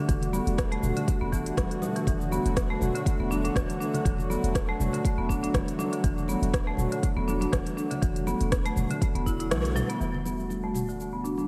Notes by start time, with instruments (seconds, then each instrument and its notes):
Already playing: analog synth pad D3 G3 A3 F#4
0.09 808-style bass E1, marimba E3, kick, closed hi-hat, shaker
0.22 closed hi-hat, low conga, shaker
0.33 marimba B3, high conga, shaker
0.47 808-style bass E1, closed hi-hat, shaker
0.58 kick, cross-stick, closed hi-hat, high conga, shaker
0.72 marimba A3, closed hi-hat
0.83 808-style bass E1, mid tom, high conga, shaker
0.96 marimba D3, closed hi-hat, low conga, shaker
1.08 kick, closed hi-hat, shaker
1.21 808-style bass E1, marimba B3
1.33 marimba E3, kick, shaker
1.46 closed hi-hat, shaker
1.57 808-style bass E1, marimba E3, kick, cross-stick, closed hi-hat, high conga, shaker
1.71 closed hi-hat, shaker
1.82 marimba B2, high conga, shaker
1.96 marimba E3, closed hi-hat, shaker
2.07 808-style bass E1, marimba E3, analog synth pad F#3, kick, closed hi-hat, shaker
2.20 low conga, shaker
2.31 marimba B3, high conga, shaker
2.45 808-style bass E1, closed hi-hat, shaker
2.56 kick, cross-stick, closed hi-hat, high conga, shaker
2.70 marimba A3
2.81 808-style bass E1, mid tom, high conga, shaker
2.95 marimba D3, closed hi-hat, shaker
3.06 kick, closed hi-hat, shaker
3.19 808-style bass E1, marimba B3
3.30 marimba D4, high conga, shaker
3.44 marimba D4, closed hi-hat, high conga, shaker
3.56 808-style bass E1, marimba E3, kick, cross-stick, closed hi-hat, shaker
3.69 closed hi-hat, high conga, shaker
3.80 marimba D4, shaker
3.94 marimba D3, closed hi-hat, low conga, shaker
4.05 808-style bass E1, marimba E3, kick, closed hi-hat, shaker
4.18 low conga, shaker
4.30 marimba B3, high conga, shaker
4.43 808-style bass E1, closed hi-hat, shaker
4.55 kick, cross-stick, closed hi-hat, high conga, shaker
4.69 marimba A3
4.80 808-style bass E1, mid tom, high conga, shaker
4.93 marimba D3, closed hi-hat, low conga, shaker
5.05 kick, closed hi-hat, shaker
5.18 808-style bass E1, marimba B3
5.29 marimba D4, kick, shaker
5.43 marimba D4, closed hi-hat, shaker
5.54 808-style bass E1, marimba E3, kick, cross-stick, closed hi-hat, high conga, shaker
5.68 closed hi-hat, shaker
5.79 marimba D4, high conga, shaker
5.93 marimba D3, closed hi-hat, shaker
6.04 808-style bass E1, marimba E3, kick, closed hi-hat, shaker
6.18 low conga, shaker
6.28 marimba B3, high conga, shaker
6.42 808-style bass E1, closed hi-hat, shaker
6.54 kick, cross-stick, closed hi-hat, high conga, shaker
6.67 marimba A3
6.77 808-style bass E1, mid tom, high conga, shaker
6.92 marimba D3, closed hi-hat, shaker
7.03 kick, closed hi-hat, shaker
7.16 808-style bass E1, marimba B3
7.28 marimba D4, high conga, shaker
7.41 marimba D4, closed hi-hat, high conga, shaker
7.52 808-style bass E1, marimba E3, kick, cross-stick, closed hi-hat, shaker
7.66 closed hi-hat, high conga, shaker
7.77 marimba D4, shaker
7.91 marimba D3, closed hi-hat, low conga, shaker
8.02 808-style bass E1, marimba E3, kick, closed hi-hat, shaker
8.16 closed hi-hat, low conga, shaker
8.27 marimba B3, high conga, shaker
8.41 808-style bass E1, closed hi-hat, shaker
8.52 kick, cross-stick, closed hi-hat, high conga, shaker
8.66 marimba A3, closed hi-hat, shaker
8.76 808-style bass E1, mid tom, high conga, shaker
8.90 marimba D3, closed hi-hat, low conga, shaker
9.02 kick, closed hi-hat, shaker
9.15 808-style bass E1, marimba B3, closed hi-hat
9.26 marimba E4, kick, shaker
9.40 marimba E4, closed hi-hat, shaker
9.51 808-style bass B1, marimba E3, cross-stick, closed hi-hat, high conga, shaker
9.65 closed hi-hat, shaker
9.76 marimba F#3, mid tom, high conga, shaker
9.89 marimba B3, closed hi-hat, shaker
10.01 808-style bass E1, analog synth pad D3 G3 A3 F#4, marimba E3, shaker
10.14 low conga
10.25 marimba B3, high conga, shaker
10.40 shaker
10.50 high conga, shaker
10.64 marimba A3
10.74 mid tom, high conga, shaker
10.89 marimba D3, shaker
11.00 shaker
11.13 marimba B3
11.24 marimba D4, shaker
11.38 marimba D4, high conga, shaker